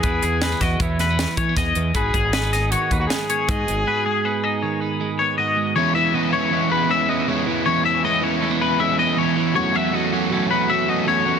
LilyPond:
<<
  \new Staff \with { instrumentName = "Clean electric guitar" } { \time 5/4 \key cis \minor \tempo 4 = 158 b'8 gis'8 b'8 dis''8 cis''8 b'4 cis''8 dis''4 | b'8 gis'8 b'8 dis''8 cis''8 b'4 cis''8 dis''4 | b'8 gis'8 b'8 dis''8 cis''8 b'4 cis''8 dis''4 | cis''8 e''8 dis''8 cis''4 b'8 e''8 dis''8 cis''4 |
cis''8 e''8 dis''8 cis''4 b'8 e''8 dis''8 cis''4 | cis''8 e''8 dis''8 cis''4 b'8 e''8 dis''8 cis''4 | }
  \new Staff \with { instrumentName = "Trumpet" } { \time 5/4 \key cis \minor gis'4. fis'8 e'4. r4. | gis'4 gis'4 fis'8. fis'16 gis'2~ | gis'1 r4 | r1 r4 |
r1 r4 | r1 r4 | }
  \new Staff \with { instrumentName = "Overdriven electric guitar" } { \time 5/4 \key cis \minor r1 r4 | r1 r4 | r1 r4 | <e gis cis' e'>8 <gis cis' e'>8 <e gis cis' e'>8 <e gis cis' e'>8 <e gis cis' e'>8 <e gis cis' e'>8 <e gis cis' e'>8 <gis cis' e'>8 <e gis cis' e'>8 <gis cis' e'>8 |
<e gis cis' e'>8 <gis cis' e'>8 <e gis cis' e'>8 <e gis cis' e'>8 <e gis cis' e'>8 <e gis cis' e'>8 <e gis cis' e'>8 <gis cis' e'>8 <e gis cis' e'>8 <gis cis' e'>8 | <fis a cis' fis'>8 <a cis' fis'>8 <fis a cis' fis'>8 <fis a cis' fis'>8 <fis a cis' fis'>8 <fis a cis' fis'>8 <fis a cis' fis'>8 <a cis' fis'>8 <fis a cis' fis'>8 <a cis' fis'>8 | }
  \new Staff \with { instrumentName = "Clean electric guitar" } { \clef bass \time 5/4 \key cis \minor << { e'4 a16 b16 e'4 a16 b8. a16 b16 gis'4 | <gis b dis' fis'>4 a16 b16 dis'4 dis'4 b8 fis'4 | fis'4 b8 dis'4 dis'4 b8 fis'4 | r4 b4 b4. b4. |
r4 b4 a16 b4~ b16 b4. | r4 a4 a8 b4 a4. | } \\ { <e, e>8 e4. b,4 e4 e,8 e8 | gis,8 gis4. dis4 gis4 gis,8 gis8 | gis,8 gis4. dis4 gis4 gis,8 gis8 | e,8 e4 e4. e4 e,8 e8 |
e,8 e4 e4. e4 e,8 e8 | e,8 fis4 fis4. fis4 e,8 fis8 | } >> }
  \new Staff \with { instrumentName = "Fingered electric bass" } { \clef bass \time 5/4 \key cis \minor e,8 e,4 e,8 e,4. e8 e,8 e,8 | gis,,8 gis,,2 dis,8 r4 gis,8 gis,,8 | r1 r4 | r1 r4 |
r1 r4 | r1 r4 | }
  \new DrumStaff \with { instrumentName = "Drums" } \drummode { \time 5/4 <hh bd>8 hh8 <hh sn>8 <hh bd sn>8 <hh bd>8 <hh sn>8 <hh sn>8 <hh bd>8 <hh bd sn>8 hh8 | <hh bd>8 <hh bd>8 <hh sn>8 <hh sn>8 hh8 <hh bd>8 <hh sn>8 hh8 <hh bd>8 hh8 | r4 r4 r4 r4 r4 | r4 r4 r4 r4 r4 |
r4 r4 r4 r4 r4 | r4 r4 r4 r4 r4 | }
>>